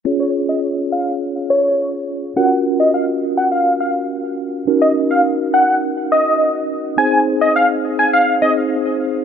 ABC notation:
X:1
M:4/4
L:1/16
Q:1/4=104
K:Db
V:1 name="Digital synth lead"
z d z e z2 f2 z2 d3 z3 | g2 z e f z2 g f2 f z4 z | z e z f z2 g2 z2 e3 z3 | a2 z e f z2 a f2 e z4 z |]
V:2 name="Tine electric piano"
[DFAd]16 | [DFGB]16 | [DEGB]16 | [CEAc]8- [CEAc]2 [CEAc]6 |]